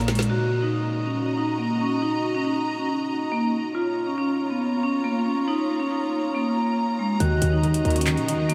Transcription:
0.00 0.28 A#1 loud
0.00 0.35 A#2 medium
0.00 0.26 F4 medium
0.00 0.26 C#5 medium
0.00 0.26 A#5 medium
0.00 closed hi-hat medium
0.08 0.25 G#3 medium
0.08 snare loud
0.08 closed hi-hat medium
0.15 snare loud
0.15 closed hi-hat medium
0.22 closed hi-hat loud
0.30 0.60 F#4 loud
0.30 3.72 F#4 medium
0.30 3.72 D#5 medium
0.30 3.72 A#5 medium
0.62 0.70 D#4 medium
0.73 1.03 D#4 medium
1.05 1.36 C#4 medium
1.37 1.54 D#4 medium
1.58 1.75 A#3 medium
1.81 1.98 C#4 medium
2.02 2.33 D#4 loud
2.35 2.43 C#4 medium
2.45 2.76 D#4 loud
2.78 2.86 C#4 medium
2.89 3.29 D#4 loud
3.32 3.48 A#3 loud
3.75 4.05 F4 loud
3.75 7.17 F4 medium
3.75 7.17 C#5 medium
3.75 8.54 A#5 loud
4.07 4.16 C#4 medium
4.18 4.48 C#4 loud
4.50 4.81 B3 medium
4.83 5.00 C#4 medium
5.04 5.21 A#3 medium
5.26 5.43 C#4 loud
5.48 5.78 D#4 loud
5.80 5.88 C#4 medium
5.91 6.21 D#4 medium
6.23 6.31 C#4 medium
6.34 6.95 A#3 medium
6.99 7.15 G#3 medium
7.20 7.41 D#2 loud
7.20 7.62 D#3 medium
7.20 7.51 F#4 loud
7.20 8.54 F#4 medium
7.20 8.54 D#5 medium
7.20 closed hi-hat medium
7.42 7.83 D#2 loud
7.42 7.68 F#3 medium
7.42 closed hi-hat medium
7.53 7.61 D#4 medium
7.63 8.06 D#3 medium
7.63 7.94 D#4 medium
7.63 closed hi-hat soft
7.74 closed hi-hat medium
7.85 8.19 D#2 loud
7.85 8.16 F#2 medium
7.85 8.16 A#2 loud
7.85 8.16 D#3 loud
7.85 closed hi-hat soft
7.90 closed hi-hat medium
7.96 8.26 C#4 medium
7.96 closed hi-hat medium
8.01 closed hi-hat medium
8.07 8.54 D#3 medium
8.07 clap loud
8.07 closed hi-hat medium
8.17 8.35 A#2 loud
8.17 closed hi-hat soft
8.28 8.45 D#4 medium
8.28 closed hi-hat medium
8.34 8.49 D#2 loud
8.49 8.54 A#3 medium
8.49 closed hi-hat medium

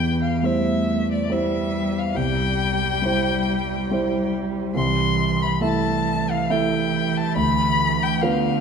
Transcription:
0.00 0.40 E2 soft
0.00 0.46 E3 soft
0.00 0.17 G5 medium
0.22 0.46 F5 medium
0.43 1.27 G3 soft
0.43 1.34 A3 soft
0.43 1.27 E4 soft
0.43 1.28 C5 soft
0.43 1.10 E5 medium
1.12 1.34 D5 medium
1.30 2.12 G3 soft
1.30 2.16 G3 soft
1.30 2.12 E4 soft
1.30 2.12 C5 soft
1.30 1.99 E5 medium
1.98 2.18 F5 medium
2.15 3.00 C2 soft
2.15 4.72 G3 medium
2.15 4.34 G5 medium
3.02 3.86 G3 soft
3.02 3.87 E4 soft
3.02 3.87 C5 soft
3.91 4.72 G3 soft
3.91 4.72 E4 soft
3.91 4.72 C5 soft
4.74 5.59 C2 medium
4.74 5.61 E3 medium
4.74 5.44 C6 medium
5.42 5.62 B5 medium
5.60 6.46 A3 soft
5.60 6.46 E4 soft
5.60 6.46 E5 soft
5.60 6.32 A5 medium
5.65 8.26 E3 medium
6.31 6.52 F5 medium
6.50 7.33 A3 soft
6.50 7.33 E4 soft
6.50 7.33 E5 medium
6.50 7.18 G5 medium
7.17 7.36 A5 medium
7.35 8.20 D2 medium
7.35 8.04 B5 loud
8.03 8.23 G5 medium
8.22 8.60 D3 medium
8.22 8.60 B3 soft
8.22 8.60 F4 soft
8.22 8.60 B4 soft
8.22 8.60 F5 medium

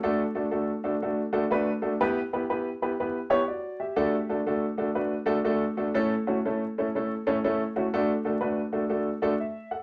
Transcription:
0.03 0.21 A3 loud
0.03 0.21 D4 medium
0.03 0.21 F#4 medium
0.03 0.21 A4 loud
0.35 0.45 A3 medium
0.35 0.45 D4 medium
0.35 0.45 F#4 medium
0.35 0.45 A4 medium
0.51 0.70 A3 medium
0.51 0.69 D4 medium
0.51 0.70 F#4 medium
0.51 0.69 A4 medium
0.84 0.94 A3 medium
0.84 0.94 D4 medium
0.84 0.94 F#4 medium
0.84 0.94 A4 medium
1.02 1.20 A3 medium
1.02 1.19 D4 medium
1.02 1.20 F#4 medium
1.02 1.19 A4 medium
1.33 1.43 A3 medium
1.33 1.43 D4 medium
1.33 1.43 F#4 medium
1.33 1.43 A4 loud
1.50 1.68 A3 loud
1.50 1.68 D4 medium
1.50 1.68 F#4 medium
1.50 1.69 B4 loud
1.82 1.92 A3 medium
1.82 1.92 D4 medium
1.82 1.92 F#4 medium
1.82 1.92 A4 medium
2.00 2.18 B3 loud
2.00 2.18 E4 medium
2.00 2.18 G4 loud
2.00 2.18 B4 loud
2.33 2.42 B3 medium
2.33 2.42 E4 medium
2.33 2.42 G4 medium
2.33 2.42 B4 medium
2.50 2.67 B3 medium
2.50 2.67 E4 medium
2.50 2.67 G4 medium
2.50 2.67 B4 medium
2.82 2.91 B3 medium
2.82 2.91 E4 medium
2.82 2.92 G4 medium
2.82 2.91 B4 medium
3.00 3.17 B3 medium
3.00 3.17 E4 medium
3.00 3.17 G4 medium
3.00 3.17 B4 medium
3.30 3.40 B3 loud
3.30 3.40 E4 medium
3.30 3.40 G4 medium
3.30 3.40 C#5 loud
3.49 3.79 F#4 medium
3.80 4.27 G4 medium
3.80 4.27 E5 medium
3.96 4.14 A3 loud
3.96 4.14 D4 medium
3.96 4.14 F#4 medium
3.96 4.14 A4 loud
4.29 4.39 A3 medium
4.29 4.39 D4 medium
4.29 4.39 F#4 medium
4.29 4.39 A4 medium
4.46 4.64 A3 medium
4.46 4.64 D4 medium
4.46 4.64 F#4 medium
4.46 4.64 A4 medium
4.78 4.88 A3 medium
4.78 4.88 D4 medium
4.78 4.88 F#4 medium
4.78 4.88 A4 medium
4.95 5.13 A3 medium
4.95 5.13 D4 medium
4.95 5.13 F#4 medium
4.95 5.13 B4 medium
5.26 5.36 A3 loud
5.26 5.37 D4 medium
5.26 5.37 F#4 medium
5.26 5.37 A4 loud
5.44 5.63 A3 loud
5.44 5.62 D4 medium
5.44 5.62 F#4 medium
5.44 5.63 A4 loud
5.77 5.87 A3 medium
5.77 5.87 D4 medium
5.77 5.87 F#4 medium
5.77 5.87 A4 medium
5.94 6.12 A3 loud
5.94 6.12 C#4 loud
5.94 6.12 E4 loud
5.94 6.12 A4 loud
6.27 6.36 A3 medium
6.27 6.37 C#4 medium
6.27 6.37 E4 medium
6.27 6.37 F#4 medium
6.45 6.62 A3 medium
6.45 6.62 C#4 medium
6.45 6.62 E4 medium
6.45 6.62 A4 medium
6.78 6.87 A3 medium
6.78 6.87 C#4 medium
6.78 6.87 E4 medium
6.78 6.87 A4 medium
6.95 7.12 A3 medium
6.95 7.12 C#4 medium
6.95 7.12 E4 medium
6.95 7.12 A4 medium
7.27 7.36 A3 loud
7.27 7.36 C#4 loud
7.27 7.36 E4 medium
7.27 7.36 A4 loud
7.44 7.61 A3 loud
7.44 7.61 C#4 medium
7.44 7.61 E4 medium
7.44 7.61 A4 loud
7.76 7.85 A3 medium
7.76 7.85 C#4 medium
7.76 7.85 E4 medium
7.76 7.85 F#4 medium
7.94 8.10 A3 loud
7.94 8.11 D4 medium
7.94 8.11 F#4 medium
7.94 8.10 A4 loud
8.25 8.34 A3 medium
8.25 8.34 D4 medium
8.25 8.34 F#4 medium
8.25 8.34 A4 medium
8.41 8.59 A3 medium
8.41 8.59 D4 medium
8.41 8.59 F#4 medium
8.41 8.58 B4 medium
8.72 8.83 A3 medium
8.72 8.82 D4 medium
8.72 8.82 F#4 medium
8.72 8.83 A4 medium
8.90 9.08 A3 medium
8.90 9.08 D4 medium
8.90 9.08 F#4 medium
8.90 9.08 A4 medium
9.22 9.32 A3 loud
9.22 9.32 D4 medium
9.22 9.32 F#4 medium
9.22 9.32 A4 loud
9.40 9.70 E5 medium
9.71 9.83 A4 medium
9.71 9.83 F#5 medium

